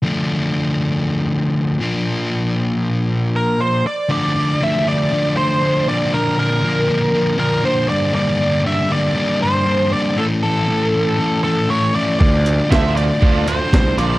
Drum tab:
HH |--------|--------|--------|--------|
SD |--------|--------|--------|--------|
BD |--------|--------|--------|--------|

HH |--------|--------|-x-x-x-x|
SD |--------|--------|--o---o-|
BD |--------|--------|o-o-o-o-|